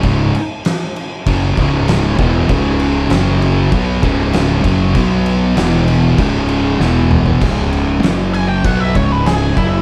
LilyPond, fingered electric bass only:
\new Staff \with { instrumentName = "Fingered electric bass" } { \clef bass \time 4/4 \key cis \minor \tempo 4 = 98 cis,,8 r4. fis,,8 cis,,4 e,,8 | cis,,4 fis,,4 b,,8 cis,,4 fis,,8 | b,,4 e,,4 cis,,4 e,,4 | cis,,4 fis,,4 b,,8 cis,,4 fis,,8 | }